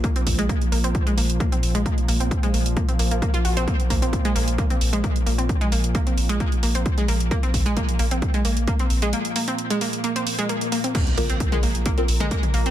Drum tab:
CC |----------------|----------------|----------------|----------------|
HH |xxoxxxoxxxoxxxox|xxoxxxoxxxoxxxox|xxoxxxoxxxoxxxox|xxoxxxoxxxoxxxox|
T2 |----------------|----------------|----------------|----------------|
BD |o-o-o---o---o---|o---o---o---o---|o-o-o---o---o---|o---o---o---o---|

CC |----------------|----------------|x---------------|
HH |xxoxxxoxxxoxxxox|xxoxxxoxxxoxxxox|xxoxxxoxxxoxxxox|
T2 |----------------|----------------|--o--o-----o-o--|
BD |o-o-o---o---o---|----------------|o---o---o---o---|